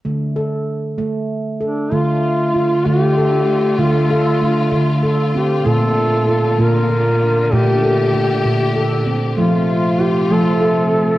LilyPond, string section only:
\new Staff \with { instrumentName = "String section" } { \time 6/8 \key d \minor \tempo 4. = 64 << { r2. | f'2.~ | f'2.~ | f'2. |
g'2. | f'2. | } \\ { r2. | <d a>2.~ | <d a>2. | <bes, d>2.~ |
<bes, d>2. | <c a>2. | } >> }